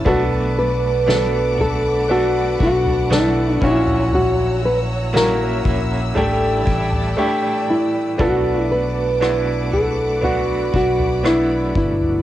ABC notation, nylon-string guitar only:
X:1
M:4/4
L:1/8
Q:1/4=59
K:Bm
V:1 name="Nylon-string guitar"
F B2 A F F E E | F B ^A2 =A3 E | F B2 A F F E E |]